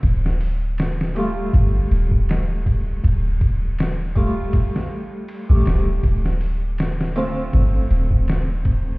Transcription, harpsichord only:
X:1
M:4/4
L:1/16
Q:"Swing 16ths" 1/4=80
K:F
V:1 name="Harpsichord"
z6 [G,A,F]8- [G,A,F]2- | [G,A,F]6 [G,A,F]6- [G,A,F] [G,A,G]3 | z6 [D,A,CF]8- [D,A,CF]2 |]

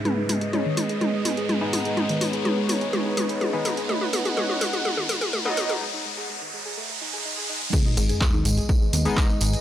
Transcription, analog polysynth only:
X:1
M:4/4
L:1/16
Q:1/4=125
K:G#m
V:1 name="Analog polysynth"
z12 z [G,B,D]3- | [G,B,D]12- [G,B,D] [G,B,D]3 | z12 z [F,B,D]3 | z16 |
z8 z3 [G,B,D]2 z3 |]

